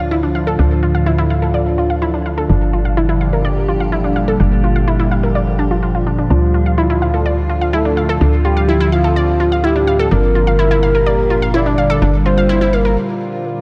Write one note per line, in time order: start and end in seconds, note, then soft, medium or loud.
0.00 0.57 D2 medium
0.00 2.46 A2 medium
0.00 6.26 D3 medium
0.00 12.97 D3 medium
0.00 2.46 F3 medium
0.00 12.97 F3 medium
0.00 8.17 D4 medium
0.00 2.46 F4 medium
0.11 0.20 E4 medium
0.23 0.35 D4 medium
0.35 0.44 F5 medium
0.47 0.52 A4 medium
0.59 2.47 D2 medium
0.59 0.64 D4 medium
0.83 0.92 F4 medium
0.95 1.00 F5 medium
1.06 1.15 E4 medium
1.18 1.24 E4 medium
1.30 1.39 F5 medium
1.42 1.48 A4 medium
1.54 1.63 D5 medium
1.78 1.87 F4 medium
1.90 1.95 F5 medium
2.02 2.11 E4 loud
2.14 2.25 D4 medium
2.26 2.35 F5 medium
2.38 2.43 A4 medium
2.49 4.38 G1 medium
2.49 6.27 A#2 medium
2.49 6.27 G3 medium
2.49 2.55 D4 medium
2.49 6.27 G4 medium
2.73 2.82 F4 medium
2.85 2.90 F5 medium
2.97 3.06 E4 medium
3.09 3.14 E4 medium
3.21 3.30 F5 medium
3.33 3.38 A#4 medium
3.45 3.54 D5 medium
3.68 3.77 F4 medium
3.80 3.86 F5 medium
3.92 4.01 E4 medium
4.04 4.15 D4 medium
4.16 4.25 F5 medium
4.28 4.33 A4 medium
4.40 6.28 G1 medium
4.40 4.45 D4 medium
4.64 4.73 F4 medium
4.76 4.81 F5 medium
4.88 4.96 E4 medium
5.00 5.05 E4 medium
5.11 5.20 F5 medium
5.23 5.29 A#4 medium
5.35 5.44 D5 medium
5.59 5.70 D4 medium
5.71 5.80 F4 medium
5.83 5.88 F4 medium
5.95 6.04 F4 medium
6.07 6.17 D4 medium
6.18 6.27 D4 medium
6.30 8.19 D2 medium
6.30 10.08 A2 medium
6.30 13.61 D3 medium
6.30 10.08 F3 medium
6.30 6.36 D4 medium
6.30 7.75 F4 loud
6.30 10.08 F4 medium
6.54 6.63 F4 medium
6.66 6.71 F5 medium
6.78 6.87 E4 medium
6.90 6.95 E4 medium
7.02 7.11 F5 medium
7.14 7.19 A4 medium
7.26 7.35 D5 medium
7.49 7.58 F4 medium
7.61 7.67 F5 medium
7.73 7.82 E4 medium
7.73 8.35 A4 medium
7.85 7.96 D4 medium
7.97 8.06 F5 medium
8.09 8.14 A4 medium
8.21 10.09 D2 medium
8.21 10.10 C4 medium
8.21 8.26 D4 medium
8.45 8.54 F4 medium
8.45 8.89 G4 medium
8.57 8.62 F5 medium
8.69 8.77 E4 medium
8.80 8.86 E4 loud
8.92 9.65 F4 medium
8.92 9.01 F5 medium
9.04 9.10 A4 medium
9.16 9.25 D5 medium
9.40 9.49 F4 medium
9.52 9.57 F5 medium
9.64 9.73 E4 loud
9.64 10.08 G4 medium
9.76 9.87 D4 medium
9.87 9.96 F5 medium
9.99 10.05 A4 medium
10.11 12.00 G1 medium
10.11 13.61 A#2 medium
10.11 13.61 G3 medium
10.11 10.17 D4 medium
10.11 13.61 D4 medium
10.11 12.00 G4 medium
10.11 11.56 A#4 loud
10.35 10.44 F4 medium
10.47 10.52 F5 medium
10.59 10.68 E4 loud
10.71 10.76 E4 medium
10.83 10.92 F5 medium
10.95 11.00 A#4 medium
11.06 11.15 D5 medium
11.30 11.39 F4 medium
11.42 11.48 F5 medium
11.54 11.63 E4 loud
11.54 12.16 D5 medium
11.66 11.77 D4 medium
11.78 11.87 F5 medium
11.90 11.95 A4 medium
12.02 12.97 G1 medium
12.02 12.07 D4 medium
12.02 13.61 F4 medium
12.26 12.35 F4 medium
12.26 12.75 C5 medium
12.38 12.43 F5 medium
12.49 12.58 E4 loud
12.61 12.67 E4 loud
12.73 12.97 A#4 medium
12.73 12.82 F5 medium
12.85 12.90 A#4 medium